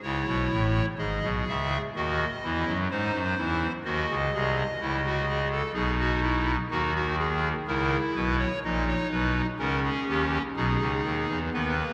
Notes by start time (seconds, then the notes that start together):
0.03 C#2 C#3 E4 C#5
0.27 B1 B2
0.51 A1 A2
0.98 G#1 G#2 G#4 D#5
1.23 B1 B2
1.48 C#2 C#3 E5
1.95 D#2 D#3 F#4 D#5
2.44 E2 E3 E4
2.67 F#2 F#3
2.91 G#2 G#3 D#4 C5
3.14 F#2 F#3
3.37 E2 E3 E4
3.84 D#2 D#3 F#4 D#5
4.09 C#2 C#3
4.34 C2 C3 G#4
4.80 C#2 C#3 E4
5.05 F#4
5.29 G#4
5.52 A4
5.73 B1 B2 D#4 G#4
6.00 F#4
6.22 E4
6.70 D#2 D#3 D#4 F#4
6.95 F#4
7.19 G#4
7.67 C#2 C#3 E4 A#4
8.15 B1 B2 B4
8.39 C#5
8.64 A#1 A#2 D#4 D#5
8.88 C#5
9.11 B1 B2 B4
9.59 C#2 C#3 C#4 A#4
9.84 G#4
10.08 D#2 D#3 G4
10.56 B1 B2 D#4 G#4
10.80 C#2 C#3
11.04 D#2 D#3
11.29 E2 E3
11.53 D#2 D#3 B3 B4
11.79 A#3